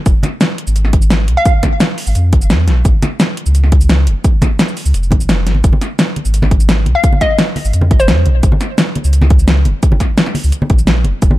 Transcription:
0.06 F1, kick, closed hi-hat, cabasa
0.23 snare, closed hi-hat, high conga, cabasa
0.41 snare, closed hi-hat, cabasa
0.58 closed hi-hat
0.67 G#1, cabasa
0.76 closed hi-hat, cabasa
0.85 snare
0.93 kick, closed hi-hat
1.02 cabasa
1.11 snare, closed hi-hat, cabasa
1.28 C2, closed hi-hat
1.37 F5
1.45 kick, closed hi-hat, cabasa
1.63 kick, snare, closed hi-hat, high conga, cabasa
1.80 snare, closed hi-hat, cabasa
1.98 open hi-hat
2.07 G#1, cabasa
2.15 F2, closed hi-hat, cabasa
2.33 F1, kick, closed hi-hat
2.42 cabasa
2.50 F2, snare, closed hi-hat, cabasa
2.67 A#1, snare, closed hi-hat
2.85 A#1, kick, closed hi-hat, cabasa
3.02 snare, closed hi-hat, high conga, cabasa
3.20 snare, closed hi-hat, cabasa
3.37 closed hi-hat
3.46 C#2, cabasa
3.55 closed hi-hat, cabasa
3.64 snare
3.72 kick, closed hi-hat
3.81 cabasa
3.89 snare, closed hi-hat, cabasa
4.07 F1, closed hi-hat
4.24 kick, closed hi-hat, cabasa
4.42 kick, snare, closed hi-hat, high conga, cabasa
4.59 snare, closed hi-hat, cabasa
4.68 cabasa
4.77 open hi-hat, cabasa
4.85 C#2, cabasa
4.94 F1, closed hi-hat, cabasa
5.03 cabasa
5.11 A#1, kick, closed hi-hat, high conga
5.21 cabasa
5.29 F1, snare, closed hi-hat, cabasa
5.46 G#1, snare, closed hi-hat
5.55 high conga
5.64 F1, kick, closed hi-hat, cabasa
5.73 high conga
5.81 snare, closed hi-hat, cabasa
5.99 snare, closed hi-hat, cabasa
6.16 closed hi-hat, high conga
6.25 G#1, cabasa
6.34 closed hi-hat, cabasa
6.42 snare, high conga
6.51 kick, closed hi-hat
6.60 cabasa
6.69 snare, closed hi-hat, cabasa
6.86 C2, closed hi-hat, high conga
6.95 F5
7.04 kick, closed hi-hat, cabasa
7.13 high conga
7.21 D#5, kick, snare, closed hi-hat, cabasa
7.39 snare, closed hi-hat, cabasa
7.56 open hi-hat, high conga
7.65 G#1, cabasa
7.73 F2, closed hi-hat, cabasa
7.81 high conga
7.91 F1, kick, closed hi-hat
8.00 C5, cabasa
8.08 F2, snare, closed hi-hat, cabasa
8.26 A#1, closed hi-hat, high conga
8.43 A#1, kick, closed hi-hat, cabasa
8.52 high conga
8.61 snare, closed hi-hat, cabasa
8.78 snare, closed hi-hat, cabasa
8.96 closed hi-hat, high conga
9.04 C#2, cabasa
9.13 closed hi-hat, cabasa
9.22 snare, high conga
9.30 kick, closed hi-hat
9.39 cabasa
9.48 snare, closed hi-hat, cabasa
9.65 F1, closed hi-hat, high conga
9.83 kick, closed hi-hat, cabasa
9.92 high conga
10.00 kick, snare, closed hi-hat, cabasa
10.18 snare, closed hi-hat, cabasa
10.26 snare
10.35 open hi-hat, high conga
10.44 C#2, cabasa
10.52 closed hi-hat, cabasa
10.62 high conga
10.70 A#1, kick, closed hi-hat
10.79 cabasa
10.87 snare, closed hi-hat, cabasa
11.04 F1, closed hi-hat, high conga
11.22 F1, kick, closed hi-hat, cabasa
11.31 high conga

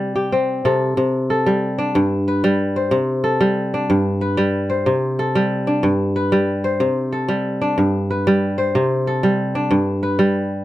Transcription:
Already playing: C3 G3 G4
0.16 G4
0.32 C4
0.65 C3 A4
0.97 C3
1.30 A4
1.46 G3
1.78 D4
1.95 G2
2.28 B4
2.44 G3
2.76 C5
2.91 C3
3.24 A4
3.41 G3
3.74 D4
3.90 G2
4.21 B4
4.37 G3
4.70 C5
4.86 C3
5.19 A4
5.35 G3
5.67 D4
5.83 G2
6.16 B4
6.32 G3
6.64 C5
6.80 C3
7.12 A4
7.28 G3
7.61 D4
7.78 G2
8.11 B4
8.27 G3
8.58 C5
8.75 C3
9.07 A4
9.23 G3
9.55 D4
9.71 G2
10.03 B4
10.19 G3

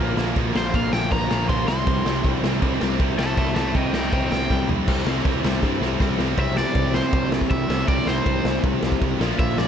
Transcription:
Already playing: F5
0.00 A#1 A#2 D3 F3 A#3 F4
0.17 A#1 A#2 D3 F3 A#3 F4, snare
0.36 A#1 A#2 D3 F3 A#3 F4, kick, crash
0.55 A#1 A#2 D3 F3 A#3 F4 C5, snare
0.74 A#1 A#2 D3 F3 A#3 F4 F5, kick, crash
0.93 A#1 A#2 D3 F3 A#3 F4 G5, snare
1.12 A#1 A#2 D3 F3 A#3 F4 A#5, kick, crash
1.30 A#1 A#2 D3 F3 A#3 F4, snare
1.49 A#1 A#2 D3 F3 A#3 F4 C6, kick, crash
1.68 C2 C3 G3 C4 E4 C6, snare
1.87 C2 C3 G3 C4 E4, kick, crash
2.05 C2 C3 G3 C4 E4, snare
2.23 C2 C3 G3 C4 E4, kick, crash
2.43 C2 C3 G3 C4 E4, snare
2.62 C2 C3 G3 C4 E4, kick, crash
2.81 C2 C3 G3 C4 E4, snare
2.99 C2 C3 G3 C4 E4, kick, crash
3.18 C2 C3 G3 C4 E4 E5 A5, snare
3.37 C2 C3 G3 C4 E4 E5 A5, kick, crash
3.55 C2 C3 G3 C4 E4 E5 A5, snare
3.74 C2 C3 G3 C4 E4 D#5 G5, kick, crash
3.93 C2 C3 G3 C4 E4 D#5 G5, snare
4.12 C2 C3 G3 C4 E4 D#5 G5, kick, crash
4.31 C2 C3 G3 C4 E4 G5, snare
4.50 C2 C3 G3 C4 E4, kick, snare
4.68 C2 C3 G3 C4 E4, floor tom
4.88 C2 C3 G3 C4 E4, kick, crash
5.05 C2 C3 G3 C4 E4, snare
5.25 C2 C3 G3 C4 E4, kick, crash
5.44 C2 C3 G3 C4 E4, snare
5.62 G2 C3 G3 C4 E4, kick, snare
5.81 C2 C3 G3 C4 E4, snare
6.00 C2 C3 G3 C4 E4, kick, snare
6.19 C2 C3 G3 C4 E4, snare
6.37 C2 C3 G3 C4 E5, kick, ride
6.41 E4
6.57 D5, snare
6.75 C2, kick, ride
6.94 C5, snare
7.13 C2, kick, ride
7.32 snare
7.41 kick
7.50 C2 E5, kick, ride
7.68 C2 C3 G3 C4 E4, snare
7.87 C2 C3 G3 C4 E4 D5, kick, ride
8.06 C2 C5, snare
8.26 C2, kick, ride
8.45 C2, snare
8.64 C2, kick, ride
8.83 C2, snare
8.92 kick
9.02 C2, kick, ride
9.19 A#1 A#2 D3 F3 A#3 F4, snare
9.39 A#1 E5, kick, ride
9.58 D5, snare

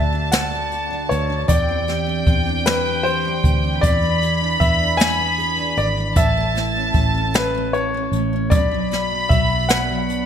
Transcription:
Already playing: D2 D3 A3 D4 F#4 A5
0.13 D4
0.32 D3 F#4 F#5, snare, closed hi-hat
0.53 A3
0.72 F#4, closed hi-hat
0.90 D4
1.09 D2 A3 C#5, closed hi-hat
1.30 D4
1.48 E2 E3 G4 D5 G5, kick, closed hi-hat
1.68 C4
1.88 G4, snare, closed hi-hat
2.06 D4
2.27 E2 C4, kick, closed hi-hat
2.46 D4
2.66 E3 G4 B4, snare, closed hi-hat
2.85 C4
3.03 G4 C5, closed hi-hat
3.25 D4
3.43 D2 C4, kick, closed hi-hat
3.64 D4
3.81 E2 E3 G#4 D5 B5, kick, closed hi-hat
4.03 B3
4.22 G#4, closed hi-hat
4.41 D4
4.60 E2 B3 E5, kick, closed hi-hat
4.80 D4
4.97 E3 G#4 G#5, snare, closed hi-hat
5.18 B3
5.38 G#4, closed hi-hat
5.57 D4
5.77 G#1 B3 D5, closed hi-hat
5.97 D4
6.16 A1 A2 E4 E5 A5, kick, closed hi-hat
6.37 A3
6.55 E4, snare, closed hi-hat
6.76 C#4
6.94 A1 A3, kick, closed hi-hat
7.15 C#4
7.34 A2 E4 B4, snare, closed hi-hat
7.55 A3
7.73 E4 C#5, closed hi-hat
7.94 C#4
8.12 A1 A3, closed hi-hat
8.33 C#4
8.50 B1 B2 D4 D5 B5, kick, closed hi-hat
8.71 F#3
8.91 D4, snare, closed hi-hat
9.12 B3
9.29 B1 F#3 E5, kick, closed hi-hat
9.50 B3
9.69 B2 D4 F#5, snare, closed hi-hat
9.89 F#3
10.09 D4, closed hi-hat

